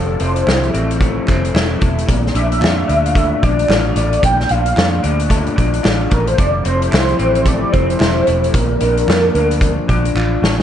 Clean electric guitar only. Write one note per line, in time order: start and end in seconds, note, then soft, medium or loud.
0.00 3.43 F3 medium
0.00 1.00 A3 medium
0.00 0.19 C4 medium
0.00 0.45 E4 medium
0.20 0.73 C4 medium
0.46 1.53 E4 medium
0.74 1.26 C4 medium
1.01 1.80 A3 medium
1.27 2.15 C4 medium
1.54 2.15 E4 medium
1.81 3.15 A3 medium
2.07 4.22 A#2 medium
2.35 2.87 D4 medium
2.61 3.68 F4 medium
2.88 3.41 D4 medium
3.15 3.95 A3 medium
3.43 4.49 D4 medium
3.69 4.76 F4 medium
3.96 5.29 A3 medium
4.23 6.38 A#2 medium
4.50 5.02 D4 medium
4.76 5.83 F4 medium
5.03 5.54 D4 medium
5.29 6.10 A3 medium
5.56 6.44 D4 medium
5.83 6.91 F4 medium
6.10 7.45 A3 medium
6.38 9.88 F3 medium
6.65 7.18 C4 medium
6.91 7.98 E4 medium
7.19 7.71 C4 medium
7.45 8.27 A3 medium
7.72 8.60 C4 medium
7.99 8.60 E4 medium
8.27 10.42 A3 medium
8.54 10.62 A#2 medium
8.81 9.35 D4 medium
9.08 10.16 F4 medium
9.35 9.88 D4 medium
9.88 10.62 D4 medium
10.16 10.62 F4 medium
10.43 10.62 A3 medium